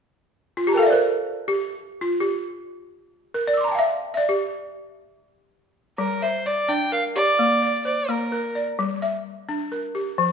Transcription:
0.57 0.67 F4 medium
0.67 0.74 G4 medium
0.67 0.82 A#5 soft
0.72 0.78 A#4 medium
0.72 0.90 G5 soft
0.72 0.86 A5 soft
0.77 0.93 A4 medium
0.77 0.93 F5 medium
0.83 1.00 D5 medium
0.83 0.97 E5 medium
0.90 1.50 A#4 medium
0.90 1.04 C5 medium
1.48 2.03 G4 medium
2.01 2.22 F4 medium
2.20 3.04 G4 medium
3.34 3.47 A#4 medium
3.47 3.79 D5 medium
3.54 3.71 D6 medium
3.54 3.68 E6 soft
3.61 3.78 A#5 medium
3.61 3.75 C6 soft
3.68 3.86 G5 medium
3.68 3.82 A5 soft
3.75 4.12 E5 medium
3.75 3.89 F5 medium
4.14 4.30 D5 medium
4.14 4.17 E5 medium
4.29 5.34 G4 medium
5.98 6.45 G3 medium
5.98 6.24 A#4 medium
6.22 6.48 C5 medium
6.22 6.92 E5 medium
6.46 7.16 D5 medium
6.46 6.71 D5 medium
6.69 7.15 D4 medium
6.69 6.92 G5 medium
6.92 7.62 A#4 medium
6.92 7.03 F5 medium
7.16 7.62 G4 medium
7.16 7.82 D5 medium
7.39 7.86 A#3 medium
7.62 8.32 D5 medium
7.85 8.55 C5 soft
7.85 8.11 D5 medium
8.09 8.55 A#3 medium
8.09 8.62 A#4 medium
8.32 9.02 A#4 medium
8.55 9.02 D5 medium
8.79 9.26 G3 medium
9.02 9.72 E5 medium
9.49 9.95 D4 medium
9.72 10.32 A#4 medium
9.95 10.32 G4 medium
10.18 10.32 F3 medium

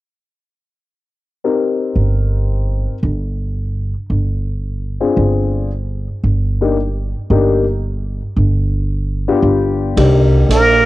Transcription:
1.44 2.94 C4 soft
1.44 2.94 D#4 soft
1.44 2.94 G4 soft
1.44 2.94 A#4 medium
1.96 2.86 G1 medium
3.03 3.93 G1 medium
4.10 4.99 G1 medium
5.01 5.67 C4 soft
5.01 5.67 D4 medium
5.01 5.67 F4 soft
5.01 5.67 G#4 medium
5.17 6.06 G1 medium
6.23 7.13 G1 medium
6.61 6.75 A#3 medium
6.61 6.75 D4 soft
6.61 6.76 D#4 soft
6.61 6.76 G4 medium
7.30 8.20 G1 medium
7.30 7.63 A#3 medium
7.30 7.64 D4 soft
7.30 7.64 D#4 medium
7.30 7.64 G4 medium
8.37 9.26 G1 medium
9.28 9.94 B3 medium
9.28 9.94 D4 medium
9.28 9.94 F4 medium
9.28 9.95 G4 medium
9.43 9.93 G1 medium
9.97 10.47 C2 medium
9.97 10.80 A#3 medium
9.97 10.80 D4 medium
9.97 10.80 D#4 medium
9.97 10.80 G4 medium
9.97 kick soft
9.97 ride medium
10.49 10.85 A#1 medium
10.49 10.85 A#3 medium
10.49 10.85 A#4 medium
10.49 hi-hat pedal medium
10.49 ride medium

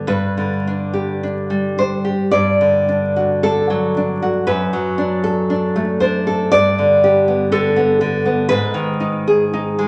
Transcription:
0.07 2.30 G2 soft
0.07 1.75 B4 medium
0.37 2.07 D3 soft
0.67 1.22 D4 soft
0.93 2.03 G4 soft
1.23 1.77 D4 soft
1.50 2.34 G3 soft
1.78 2.34 D4 soft
1.78 2.32 C5 medium
2.05 2.33 G4 soft
2.31 4.43 G2 soft
2.31 3.38 D5 medium
2.61 4.22 D3 soft
2.89 3.42 D4 soft
3.16 4.21 F#4 soft
3.43 3.96 D4 soft
3.43 4.44 A4 medium
3.70 4.48 F#3 soft
3.97 4.48 D4 soft
4.22 4.48 F#4 soft
4.47 6.48 F#2 medium
4.47 5.97 B4 medium
4.73 6.01 F#3 soft
4.98 5.49 D4 soft
5.24 6.26 A4 soft
5.50 6.00 D4 soft
5.76 6.52 A3 soft
6.00 6.52 D4 soft
6.00 6.50 C5 medium
6.27 6.52 A4 soft
6.52 8.44 G2 medium
6.52 7.46 D5 medium
6.78 7.51 D3 soft
7.04 8.48 G4 medium
7.28 7.75 B3 soft
7.52 8.00 D3 soft
7.52 8.45 A4 medium
7.76 8.24 B3 soft
8.01 8.49 D3 soft
8.25 8.49 B3 soft
8.49 9.88 G#2 medium
8.49 9.88 B4 medium
8.74 9.88 D#3 medium
9.00 9.52 D#4 medium
9.28 9.88 G#4 medium
9.53 9.88 D#4 medium
9.79 9.88 G#3 medium

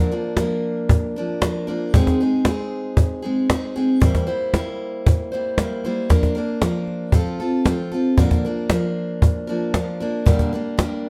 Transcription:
0.00 0.12 A#2 medium
0.00 0.12 D3 medium
0.00 0.12 F3 medium
0.00 0.11 A#3 medium
0.00 0.11 D4 medium
0.00 0.10 A#4 medium
0.11 0.36 F3 soft
0.11 0.37 A#3 soft
0.11 0.37 D4 soft
0.11 0.37 A#4 soft
0.37 1.15 F3 medium
0.37 1.16 A#3 medium
0.37 1.16 D4 medium
0.37 1.15 A#4 medium
0.37 cajon slap medium
0.89 cajon bass medium
1.16 1.40 F3 soft
1.16 1.41 A#3 soft
1.16 1.42 D4 soft
1.16 1.42 A#4 medium
1.41 1.67 F3 soft
1.41 1.67 A#3 soft
1.41 1.67 D4 medium
1.41 1.66 A#4 medium
1.41 cajon slap medium
1.67 1.94 F3 soft
1.67 1.94 A#3 soft
1.67 1.94 D4 soft
1.67 1.93 A#4 soft
1.67 cajon slap soft
1.94 2.20 G#2 medium
1.94 2.20 D#3 medium
1.94 2.20 G#3 medium
1.94 2.20 C4 medium
1.94 2.20 D#4 medium
1.94 2.19 G#4 medium
1.94 cajon bass medium
2.07 cajon bass medium
2.07 cajon slap soft
2.21 2.45 G#3 soft
2.21 2.46 C4 soft
2.21 2.46 D#4 soft
2.21 2.46 G#4 medium
2.45 3.24 G#3 medium
2.45 3.23 C4 medium
2.45 3.22 D#4 medium
2.45 3.21 G#4 medium
2.45 cajon slap medium
2.97 cajon bass medium
3.22 3.49 G#3 soft
3.22 3.49 C4 soft
3.22 3.50 D#4 soft
3.22 3.49 G#4 medium
3.50 3.76 G#3 soft
3.50 3.76 C4 medium
3.50 3.75 D#4 medium
3.50 3.74 G#4 medium
3.50 cajon slap medium
3.76 4.01 G#3 soft
3.76 4.01 C4 soft
3.76 4.01 D#4 soft
3.76 4.02 G#4 medium
3.76 cajon slap soft
4.00 4.27 G2 medium
4.00 4.27 E3 medium
4.00 4.28 G3 medium
4.00 4.27 A#3 medium
4.00 4.26 E4 medium
4.00 4.26 C5 medium
4.00 cajon bass medium
4.15 cajon bass medium
4.15 cajon slap soft
4.27 4.53 G3 soft
4.27 4.53 A#3 soft
4.27 4.53 E4 medium
4.27 4.53 C5 medium
4.54 5.32 G3 medium
4.54 5.32 A#3 medium
4.54 5.32 E4 medium
4.54 5.31 C5 medium
4.54 cajon slap medium
5.06 cajon bass medium
5.32 5.58 G3 soft
5.32 5.58 A#3 soft
5.32 5.58 E4 soft
5.32 5.58 C5 medium
5.58 5.84 G3 soft
5.58 5.84 A#3 medium
5.58 5.84 E4 medium
5.58 5.83 C5 medium
5.58 cajon slap medium
5.84 6.09 G3 soft
5.84 6.09 A#3 soft
5.84 6.10 E4 medium
5.84 6.10 C5 medium
5.84 cajon slap soft
6.10 6.36 F3 medium
6.10 6.36 A#3 medium
6.10 6.35 D4 medium
6.10 6.34 A#4 medium
6.10 cajon bass medium
6.10 cajon slap soft
6.23 cajon bass medium
6.23 cajon slap soft
6.35 6.61 A#3 soft
6.35 6.61 D4 soft
6.35 6.61 A#4 medium
6.61 7.12 F3 medium
6.61 7.13 A#3 medium
6.61 7.13 D4 medium
6.61 7.15 A#4 medium
6.61 cajon slap medium
6.87 cajon slap soft
7.12 7.39 F3 medium
7.12 7.40 C4 medium
7.12 7.39 F4 medium
7.12 7.39 A4 medium
7.12 cajon bass medium
7.26 cajon slap soft
7.39 7.65 C4 soft
7.39 7.66 F4 soft
7.39 7.66 A4 medium
7.39 cajon slap soft
7.65 7.91 F3 medium
7.65 7.92 C4 medium
7.65 7.92 F4 medium
7.65 7.90 A4 medium
7.65 cajon slap medium
7.92 8.18 C4 soft
7.92 8.18 F4 soft
7.92 8.18 A4 medium
7.92 cajon slap soft
8.17 8.44 A#2 medium
8.17 8.44 D3 medium
8.17 8.44 F3 medium
8.17 8.44 A#3 medium
8.17 8.44 D4 medium
8.17 8.43 A#4 medium
8.17 cajon bass medium
8.31 cajon bass medium
8.31 cajon slap soft
8.45 8.69 F3 soft
8.45 8.70 A#3 soft
8.45 8.71 D4 medium
8.45 8.70 A#4 soft
8.70 9.48 F3 medium
8.70 9.49 A#3 medium
8.70 9.48 D4 medium
8.70 9.47 A#4 medium
8.70 cajon slap medium
9.22 cajon bass medium
9.47 9.73 F3 soft
9.47 9.74 A#3 soft
9.47 9.74 D4 soft
9.47 9.74 A#4 medium
9.74 10.00 F3 medium
9.74 10.00 A#3 medium
9.74 10.00 D4 medium
9.74 9.99 A#4 medium
9.74 cajon slap medium
10.00 10.26 F3 soft
10.00 10.26 A#3 soft
10.00 10.26 D4 soft
10.00 10.26 A#4 medium
10.00 cajon slap soft
10.26 10.52 A#2 medium
10.26 10.52 D3 medium
10.26 10.52 G3 medium
10.26 10.52 A#3 medium
10.26 10.53 D4 medium
10.26 10.51 A#4 medium
10.26 cajon bass medium
10.39 cajon bass medium
10.39 cajon slap soft
10.53 10.76 G3 soft
10.53 10.78 A#3 soft
10.53 10.78 D4 medium
10.53 10.78 A#4 medium
10.78 11.09 G3 medium
10.78 11.09 A#3 medium
10.78 11.09 D4 medium
10.78 11.09 A#4 medium
10.78 cajon slap medium

